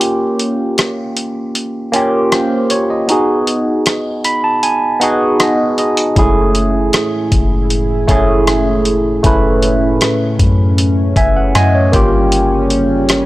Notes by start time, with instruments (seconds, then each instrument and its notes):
Already playing: tine electric piano A#3 C#4 F4 G4
0.01 closed hi-hat
0.39 closed hi-hat
0.78 cross-stick, closed hi-hat
1.17 closed hi-hat
1.55 closed hi-hat
1.92 tine electric piano A#3 C#4 F4 G4, closed hi-hat
2.32 tine electric piano C5, cross-stick, closed hi-hat
2.70 tine electric piano C#5, closed hi-hat
2.90 tine electric piano D#5
3.08 tine electric piano B3 D#4 F#4 G#4, closed hi-hat
3.47 closed hi-hat
3.86 cross-stick, closed hi-hat
4.24 tine electric piano B5, closed hi-hat
4.44 tine electric piano A5
4.63 tine electric piano G#5, closed hi-hat
5.00 tine electric piano B3 D#4 F#4 G#4 F#5, closed hi-hat
5.40 tine electric piano D#5, cross-stick, closed hi-hat
5.78 tine electric piano D#5, closed hi-hat
5.97 closed hi-hat
6.15 808-style bass F#1, analog synth pad A2 E4 G#4, tine electric piano G#3 C#4 E4 G#4, kick, closed hi-hat
6.22 tine electric piano A3
6.55 closed hi-hat
6.93 cross-stick, closed hi-hat
7.32 808-style bass F#1, kick, closed hi-hat
7.70 closed hi-hat
8.08 808-style bass F#1, tine electric piano A3 C#4 E4 G#4, kick, closed hi-hat
8.47 cross-stick, closed hi-hat
8.85 closed hi-hat
9.23 808-style bass F#1, tine electric piano A3 C#4 E4 B4, analog synth pad C#4, kick, closed hi-hat
9.62 closed hi-hat
10.01 cross-stick, closed hi-hat
10.39 808-style bass F#2, kick, closed hi-hat
10.78 closed hi-hat
11.16 808-style bass F#1, tine electric piano E5 G#5, kick, closed hi-hat
11.36 tine electric piano F#5
11.55 808-style bass F#2, tine electric piano D#5 G#5, cross-stick, closed hi-hat
11.74 tine electric piano C#5
11.92 808-style bass G1, analog synth pad C#3 G3, tine electric piano A#3 C#4 F4 G4 G5, kick, closed hi-hat
12.32 closed hi-hat
12.70 closed hi-hat
13.09 cross-stick, closed hi-hat